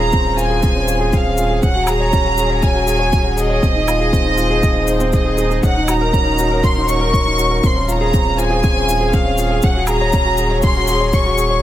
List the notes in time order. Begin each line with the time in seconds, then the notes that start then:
Already playing: D#1 F3 C#4 D#4 F4 A#4 A#5
0.00 G#4 C5
0.12 C4 G#4, kick, shaker
0.24 C#4
0.37 F4 G#5, shaker
0.50 G#4
0.63 C4, kick, shaker
0.75 C#4
0.88 F4, shaker
1.00 G#4
1.13 C4 F5, kick, shaker
1.26 C#4
1.37 F4, shaker
1.50 G#4
1.62 D#1 F#3 C#4 F#5, kick, shaker
1.76 F#4
1.87 G#4 A#5, low woodblock, shaker
2.00 C#5
2.13 C#4, kick, shaker
2.25 F#4
2.38 G#4, shaker
2.50 C#5
2.62 C#4 G#5, kick, shaker
2.75 F#4
2.87 G#4, shaker
2.99 C#5
3.12 C#4, kick, shaker
3.24 F#4
3.37 G#4 D#5, shaker
3.50 C#5
3.62 D#1 F3 C4, kick, shaker
3.75 D#4
3.88 F4, low woodblock, shaker
4.00 G#4 C5
4.06 D#4
4.13 C4, kick, shaker
4.25 D#4
4.37 F4, shaker
4.50 G#4
4.62 C4, kick, shaker
4.75 D#4
4.87 C5, shaker
5.00 C4, shaker
5.13 G#4 D#5, kick, shaker
5.25 G#4
5.38 G#4, shaker
5.51 G#4, shaker
5.63 D#1 F#3 C#4 F#5, kick, shaker
5.76 D#4
5.88 F#4 A#5, low woodblock, shaker
6.01 A#4
6.13 C#4, kick, shaker
6.22 C#5
6.26 D#4
6.33 A#4
6.38 F#4, shaker
6.51 A#4
6.64 C#4 C6, kick, shaker
6.76 D#4
6.88 F#4 C#6, shaker
7.01 A#4
7.13 C#4, kick, shaker
7.26 D#4
7.38 F#4, shaker
7.51 A#4
7.64 D#1 F3 C4 C6, kick, shaker
7.76 C#4
7.88 F4 G#4 A#5, shaker
7.92 C5
8.01 G#4
8.13 C4, kick, shaker
8.26 C#4
8.38 F4 G#5, shaker
8.50 G#4
8.63 C4, kick, shaker
8.75 C#4
8.88 F4, shaker
9.00 G#4
9.13 C4 F5, kick, shaker
9.25 C#4
9.38 F4, shaker
9.51 G#4
9.62 D#1 F#3 C#4 F#5, kick, shaker
9.76 F#4
9.87 G#4 A#5, low woodblock, shaker
10.01 C#5
10.13 C#4, kick, shaker
10.25 F#4
10.37 G#4, shaker
10.51 C#5
10.62 C#4 C6, kick, shaker
10.76 F#4
10.88 G#4, shaker
11.01 C#5
11.13 C#4 C#6, kick, shaker
11.25 F#4
11.38 G#4, shaker
11.50 C#5